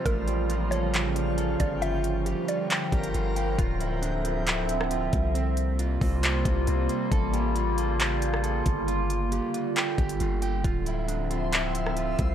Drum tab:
HH |x-x-x-x-x-x-x-x-|x-x-x-x-x-xxx-x-|x-x-x-x-x-x-x-x-|x-x-x-o-x-x-x-x-|
CP |--------x-------|--------x-------|--------x-------|--------x-------|
SD |----------------|----------------|-----------r----|----------------|
BD |o-------------o-|----------o-----|o-------------o-|------o---o-----|

HH |x-x-x-x-x-x-x-x-|x-x-x-x-x-xxx-x-|x-x-x-x-x-x-x-x-|
CP |--------x-------|--------x-------|--------x-------|
SD |-----------r----|----------------|-----------r----|
BD |o-------------o-|----------o-----|o-------------o-|